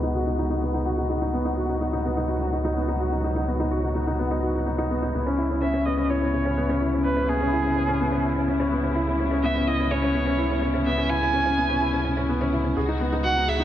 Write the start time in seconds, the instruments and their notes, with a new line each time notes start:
Already playing: analog synth bass C#2, string section B2 G#3 F#4, felt piano B3 D#4 F#4
0.03 felt piano D#4
0.15 felt piano F#4
0.27 felt piano D#4
0.39 felt piano D#4
0.50 felt piano D#4
0.62 felt piano B3
0.74 felt piano D#4
0.86 felt piano F#4
0.98 felt piano D#4
1.10 felt piano D#4
1.22 felt piano D#4
1.33 string section F#3, felt piano B3
1.45 felt piano D#4
1.57 felt piano F#4
1.69 felt piano D#4
1.81 felt piano D#4
1.93 felt piano D#4
2.05 felt piano B3
2.17 felt piano D#4
2.29 felt piano F#4
2.41 felt piano D#4
2.53 felt piano D#4
2.65 felt piano D#4
2.76 felt piano B3
2.88 felt piano D#4
3.00 felt piano F#4
3.12 felt piano D#4
3.24 felt piano D#4
3.36 felt piano D#4
3.48 felt piano B3
3.60 felt piano D#4
3.71 felt piano F#4
3.83 felt piano D#4
3.95 felt piano D#4
4.07 felt piano D#4
4.19 felt piano B3
4.31 felt piano D#4
4.43 felt piano F#4
4.54 felt piano D#4
4.66 felt piano D#4
4.78 felt piano D#4
4.90 felt piano B3
5.02 felt piano D#4
5.14 analog synth bass C#2, string section C#3 B3 E4, felt piano B3
5.26 felt piano C#4
5.38 felt piano E4
5.50 felt piano C#4
5.62 felt piano C#4, violin E5
5.74 felt piano C#4
5.86 felt piano B3, violin D#5
5.97 felt piano C#4
6.09 felt piano E4, violin C#5
6.21 felt piano C#4
6.33 felt piano C#4
6.45 felt piano C#4
6.57 felt piano B3
6.69 felt piano C#4
6.81 felt piano E4
6.93 felt piano C#4
7.04 felt piano C#4, violin B4
7.17 felt piano C#4
7.29 felt piano B3, violin G#4
7.41 felt piano C#4
7.52 felt piano E4
7.64 felt piano C#4
7.76 felt piano C#4
7.88 felt piano C#4
8.00 felt piano B3
8.12 felt piano C#4
8.24 felt piano E4
8.36 felt piano C#4
8.48 felt piano C#4
8.60 felt piano C#4
8.72 felt piano B3
8.84 felt piano C#4
8.95 felt piano E4
9.07 felt piano C#4
9.19 felt piano C#4
9.31 felt piano C#4
9.43 felt piano B3, violin E5
9.55 felt piano C#4
9.67 felt piano E4, violin D#5
9.79 felt piano C#4
9.91 felt piano C#4, violin C#5
10.02 felt piano C#4
10.15 felt piano B3
10.26 felt piano C#4
10.38 felt piano E4
10.50 felt piano C#4
10.62 felt piano C#4
10.74 felt piano C#4
10.86 felt piano B3, violin E5
10.98 felt piano C#4
11.10 felt piano E4, violin G#5
11.22 felt piano C#4
11.34 felt piano C#4
11.46 felt piano C#4
11.57 felt piano B3
11.69 felt piano C#4
11.81 felt piano E4
11.93 felt piano C#4
12.05 felt piano C#4
12.17 felt piano C#4
12.29 felt piano B3
12.41 felt piano C#4
12.53 felt piano E4
12.64 felt piano C#4
12.76 analog synth bass C#2, string section B2 G#3 F#4, felt piano G#4
12.88 felt piano D#4
13.00 felt piano B3
13.12 felt piano D#4
13.24 felt piano F#4, violin F#5
13.36 felt piano D#4
13.48 felt piano G#4, violin E5
13.60 felt piano D#4